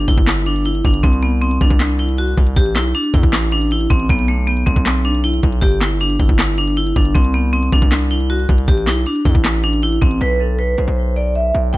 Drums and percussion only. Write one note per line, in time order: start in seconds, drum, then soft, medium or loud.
0.08 kick loud
0.08 open hi-hat medium
0.18 kick loud
0.18 closed hi-hat medium
0.27 snare loud
0.27 clap loud
0.27 closed hi-hat medium
0.37 closed hi-hat medium
0.46 closed hi-hat medium
0.56 closed hi-hat medium
0.65 closed hi-hat medium
0.75 closed hi-hat medium
0.85 kick loud
0.94 closed hi-hat medium
1.04 kick loud
1.04 closed hi-hat medium
1.13 closed hi-hat medium
1.23 closed hi-hat medium
1.42 closed hi-hat medium
1.51 closed hi-hat medium
1.61 kick medium
1.61 closed hi-hat medium
1.70 kick medium
1.70 closed hi-hat medium
1.80 snare loud
1.80 clap loud
1.80 closed hi-hat medium
1.90 closed hi-hat medium
1.99 closed hi-hat medium
2.09 closed hi-hat medium
2.18 closed hi-hat medium
2.28 closed hi-hat medium
2.37 kick loud
2.47 closed hi-hat medium
2.56 kick loud
2.56 closed hi-hat medium
2.66 closed hi-hat medium
2.75 snare loud
2.75 clap medium
2.75 closed hi-hat medium
2.95 closed hi-hat medium
3.04 closed hi-hat medium
3.14 kick loud
3.14 open hi-hat medium
3.23 kick medium
3.23 closed hi-hat medium
3.33 snare loud
3.33 clap loud
3.33 closed hi-hat medium
3.43 closed hi-hat medium
3.52 closed hi-hat medium
3.62 closed hi-hat medium
3.71 closed hi-hat medium
3.81 closed hi-hat medium
3.90 kick loud
4.00 closed hi-hat medium
4.09 kick loud
4.09 closed hi-hat medium
4.19 closed hi-hat medium
4.28 closed hi-hat medium
4.48 closed hi-hat medium
4.57 closed hi-hat medium
4.67 kick loud
4.67 closed hi-hat medium
4.76 kick medium
4.76 closed hi-hat medium
4.86 snare loud
4.86 clap loud
4.86 closed hi-hat medium
4.95 closed hi-hat medium
5.05 closed hi-hat medium
5.15 closed hi-hat medium
5.24 closed hi-hat medium
5.34 closed hi-hat medium
5.43 kick loud
5.53 closed hi-hat medium
5.62 kick loud
5.62 closed hi-hat medium
5.72 closed hi-hat medium
5.81 snare loud
5.81 clap medium
5.81 closed hi-hat medium
6.00 closed hi-hat medium
6.10 closed hi-hat medium
6.20 kick medium
6.20 open hi-hat medium
6.29 kick medium
6.29 closed hi-hat medium
6.39 snare loud
6.39 clap loud
6.39 closed hi-hat medium
6.48 closed hi-hat medium
6.58 closed hi-hat medium
6.68 closed hi-hat medium
6.77 closed hi-hat medium
6.87 closed hi-hat medium
6.96 kick loud
7.05 closed hi-hat medium
7.15 kick loud
7.15 closed hi-hat medium
7.25 closed hi-hat medium
7.34 closed hi-hat medium
7.53 closed hi-hat medium
7.63 closed hi-hat medium
7.72 kick loud
7.72 closed hi-hat medium
7.82 kick medium
7.82 closed hi-hat medium
7.92 snare loud
7.92 clap loud
7.92 closed hi-hat medium
8.01 closed hi-hat medium
8.11 closed hi-hat medium
8.20 closed hi-hat medium
8.30 closed hi-hat medium
8.40 closed hi-hat medium
8.49 kick loud
8.58 closed hi-hat medium
8.68 kick loud
8.68 closed hi-hat medium
8.78 closed hi-hat medium
8.87 snare loud
8.87 clap medium
8.87 closed hi-hat medium
9.06 closed hi-hat medium
9.16 closed hi-hat medium
9.25 kick medium
9.25 open hi-hat medium
9.35 kick medium
9.35 closed hi-hat soft
9.44 snare loud
9.44 clap loud
9.44 closed hi-hat medium
9.54 closed hi-hat medium
9.63 closed hi-hat medium
9.73 closed hi-hat medium
9.83 closed hi-hat medium
9.92 closed hi-hat medium
10.02 kick loud
10.11 closed hi-hat medium